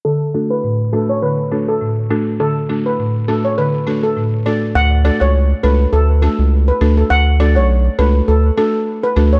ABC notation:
X:1
M:4/4
L:1/16
Q:"Swing 16ths" 1/4=102
K:D
V:1 name="Steel pan"
A z2 B z2 A c B z2 A z4 | A z2 B z2 A c B z2 A z2 d z | f z d c z2 B z A z A z2 B z A | f z d c z2 B z A z A z2 B z c |]
V:2 name="Marimba"
z2 [A,DFA]2 z2 [A,DFA]2 z2 [A,DFA]2 z2 [A,DFA]2 | z2 [A,DFA]2 z2 [A,DFA]2 z2 [A,DFA]2 z2 [A,DFA]2 | z2 [A,DFA]2 z2 [A,DFA]2 z2 [A,DFA]2 z2 [A,DFA]2 | z2 [A,DFA]2 z2 [A,DFA]2 z2 [A,DFA]2 z2 [A,DFA]2 |]
V:3 name="Marimba" clef=bass
D,4 A,,4 D,4 A,,4 | D,4 A,,4 D,4 A,,4 | z16 | z16 |]
V:4 name="Analog synth bass" clef=bass
z16 | z16 | D,,3 C,,3 C,,2 D,,3 C,,3 D,,2 | D,,3 B,,,3 C,,2 D,,2 z4 D,,2 |]